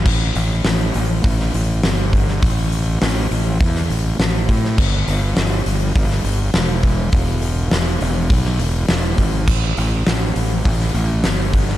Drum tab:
CC |x---------------|----------------|x---------------|----------------|
HH |--o-o-o-o-o-o-o-|o-o-o-o-o-o-o-o-|--o-o-o-o-o-o-o-|o-o-o-o-o-o-o-o-|
SD |----o----o--o--o|----o----o--o--o|----o----o--o---|----o----o--o---|
BD |o-------o-----o-|o-------o-----o-|o-------o-----o-|o-------o-----o-|

CC |x---------------|
HH |--o-o-o-o-o-o-o-|
SD |----o----o--o--o|
BD |o-------o-----o-|